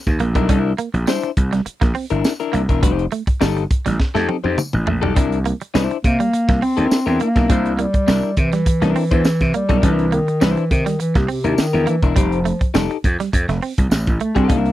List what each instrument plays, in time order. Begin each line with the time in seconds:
0.06 slap bass D#2, kick, snare
0.20 slap bass A#1, clean electric guitar A#3, closed hi-hat
0.35 slap bass B1, clean electric guitar G3 D4 E4 A#4, kick, closed hi-hat
0.49 slap bass C2, clean electric guitar G3 D4 E4 A#4, kick, closed hi-hat
0.78 clean electric guitar A#3, closed hi-hat
0.94 slap bass A#1, muted clean electric guitar stroke, closed hi-hat
1.07 clean electric guitar G3 D4 E4 C5, snare, tambourine
1.23 muted clean electric guitar stroke, closed hi-hat
1.37 slap bass C2, kick, closed hi-hat
1.53 clean electric guitar G3, snare, closed hi-hat
1.66 muted clean electric guitar stroke, muted slap bass stroke, closed hi-hat
1.81 slap bass A#1, clean electric guitar A#3, kick, snare, closed hi-hat
1.95 clean electric guitar C4, open hi-hat
2.10 slap bass G1, clean electric guitar D4 E4 A#4, closed hi-hat
2.24 snare, tambourine
2.40 clean electric guitar D4 E4 A#4, closed hi-hat
2.53 slap bass C2, clean electric guitar A#3, closed hi-hat
2.69 slap bass E1, clean electric guitar D4 E4 A#4, kick, closed hi-hat
2.82 slap bass F1, clean electric guitar G3 D#4 G4 C5, kick, closed hi-hat
2.99 closed hi-hat
3.12 clean electric guitar A3, closed hi-hat
3.27 muted slap bass stroke, muted clean electric guitar stroke, kick, closed hi-hat
3.41 slap bass G1, clean electric guitar G3 D#4 G4 A4, snare, tambourine
3.57 muted clean electric guitar stroke, closed hi-hat
3.71 kick, closed hi-hat
3.86 slap bass A1, clean electric guitar G3, snare, closed hi-hat
4.00 muted clean electric guitar stroke, kick, snare
4.15 slap bass F2, clean electric guitar A3 D#4 G4 A4, snare
4.29 clean electric guitar C4, high tom
4.44 slap bass F2, clean electric guitar D#4 G4 C5, high tom
4.58 muted clean electric guitar stroke, mid tom, tambourine
4.73 slap bass A1, mid tom
4.87 slap bass A#1, clean electric guitar A3, floor tom
5.02 slap bass B1, clean electric guitar G3 D#4 G4 A4, floor tom
5.15 slap bass C2, clean electric guitar G3 D4 E4 A#4, kick, closed hi-hat
5.32 closed hi-hat
5.45 clean electric guitar A#3, closed hi-hat
5.61 muted clean electric guitar stroke, closed hi-hat
5.74 slap bass C2, clean electric guitar G3 D4 E4 C5, snare, tambourine
5.90 muted clean electric guitar stroke, closed hi-hat
6.04 slap bass C3, bass clarinet A#3, kick, closed hi-hat
6.20 clean electric guitar G3, closed hi-hat
6.33 muted clean electric guitar stroke, closed hi-hat
6.49 slap bass C2, clean electric guitar A#3, kick, snare, closed hi-hat
6.62 clean electric guitar C4, bass clarinet C4, open hi-hat
6.77 slap bass D#2, clean electric guitar D4 E4 A#4, closed hi-hat
6.91 muted slap bass stroke, snare, tambourine
7.06 slap bass E2, bass clarinet C4, clean electric guitar D4 E4 A#4, closed hi-hat
7.20 clean electric guitar A#3, bass clarinet A#3, closed hi-hat
7.36 slap bass B1, clean electric guitar D4 E4 A#4, kick, snare, closed hi-hat
7.49 slap bass C2, clean electric guitar G3 D4 E4 C5, kick, closed hi-hat
7.66 closed hi-hat
7.72 bass clarinet A#3
7.79 bass clarinet G3, clean electric guitar A#3, closed hi-hat
7.94 muted clean electric guitar stroke, kick, closed hi-hat
8.07 slap bass C2, clean electric guitar G3 D4 E4 A#4, snare, tambourine
8.23 muted clean electric guitar stroke
8.37 slap bass C3, bass clarinet E3, kick, closed hi-hat
8.52 clean electric guitar G3, snare, closed hi-hat
8.66 muted clean electric guitar stroke, kick, closed hi-hat
8.82 slap bass C2, clean electric guitar A#3 D4 E4 A#4, snare, closed hi-hat
8.96 clean electric guitar C4, open hi-hat
9.11 slap bass E2, bass clarinet E3, clean electric guitar D4 E4 C5, kick, closed hi-hat
9.25 muted clean electric guitar stroke, snare, tambourine
9.40 slap bass C3, kick, snare, closed hi-hat
9.54 bass clarinet G3, clean electric guitar A#3, closed hi-hat
9.69 slap bass B1, clean electric guitar G3 D4 E4 A#4, kick, closed hi-hat
9.83 slap bass C2, bass clarinet E3, clean electric guitar G3 D4 E4 A#4, kick, closed hi-hat
9.99 closed hi-hat
10.12 bass clarinet D#3, clean electric guitar A#3, closed hi-hat
10.28 muted clean electric guitar stroke, closed hi-hat
10.41 slap bass C2, bass clarinet E3, clean electric guitar G3 D4 E4 C5, snare, tambourine
10.57 muted clean electric guitar stroke, closed hi-hat
10.71 slap bass C3, bass clarinet D#3, kick, closed hi-hat
10.86 clean electric guitar G3, snare, closed hi-hat
11.00 bass clarinet E3, muted clean electric guitar stroke, closed hi-hat
11.15 slap bass C2, bass clarinet C3, clean electric guitar A#3, kick, snare, closed hi-hat
11.28 bass clarinet C3, clean electric guitar C4, open hi-hat
11.44 slap bass D#2, clean electric guitar D4 E4 A#4, closed hi-hat
11.58 bass clarinet D#3, muted slap bass stroke, snare, tambourine
11.73 slap bass E2, clean electric guitar D4 E4 A#4, closed hi-hat
11.87 bass clarinet E3, clean electric guitar A#3, closed hi-hat
12.02 slap bass E1, clean electric guitar D4 E4 A#4, kick, closed hi-hat
12.16 slap bass F1, bass clarinet F3, clean electric guitar G3 D#4 G4 C5, kick, closed hi-hat
12.32 closed hi-hat
12.45 clean electric guitar A3, closed hi-hat
12.61 muted clean electric guitar stroke, kick, closed hi-hat
12.74 slap bass F1, clean electric guitar G3 D#4 G4 A4, snare, tambourine
12.90 muted clean electric guitar stroke, closed hi-hat
13.04 slap bass F2, kick, closed hi-hat
13.20 clean electric guitar G3, snare, closed hi-hat
13.33 slap bass F2, muted clean electric guitar stroke, kick, closed hi-hat
13.48 slap bass F1, clean electric guitar A3, snare, closed hi-hat
13.62 clean electric guitar C4, open hi-hat
13.78 slap bass C2, kick, closed hi-hat
13.91 slap bass A1, muted clean electric guitar stroke, snare, tambourine
14.07 slap bass A1, kick, closed hi-hat
14.20 bass clarinet A3, clean electric guitar A3, closed hi-hat
14.35 slap bass C2, clean electric guitar G3 D#4 G4 A4, bass clarinet C4, kick, closed hi-hat
14.48 slap bass C2, clean electric guitar G3 D4 E4 A#4, bass clarinet A#3, kick, closed hi-hat
14.66 closed hi-hat